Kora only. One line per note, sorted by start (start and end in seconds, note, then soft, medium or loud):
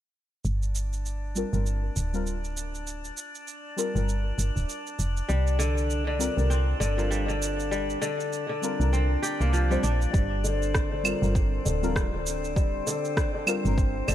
5.29 5.65 G3 medium
5.59 6.06 D3 medium
6.07 6.79 D3 medium
6.50 8.30 C4 medium
6.80 7.27 D3 medium
6.98 7.31 F3 medium
7.11 7.31 G3 medium
7.28 8.00 D3 medium
7.71 8.07 G3 medium
8.02 8.48 D3 loud
8.49 10.19 D3 medium
8.93 10.73 C4 medium
9.22 10.64 G4 loud
9.41 11.34 A#3 medium
9.53 10.19 F3 medium
9.71 10.12 G3 medium
9.83 11.51 D4 medium
10.13 10.49 G3 medium
10.44 10.91 D3 loud
10.92 11.64 D3 medium
11.35 13.15 C4 medium
11.66 12.13 D3 loud
11.83 12.16 F3 medium
11.95 12.16 G3 medium
12.14 12.86 D3 medium
12.57 12.92 G3 medium
12.87 13.33 D3 loud
13.35 14.07 D3 medium
13.77 14.15 C4 medium
14.08 14.15 D3 loud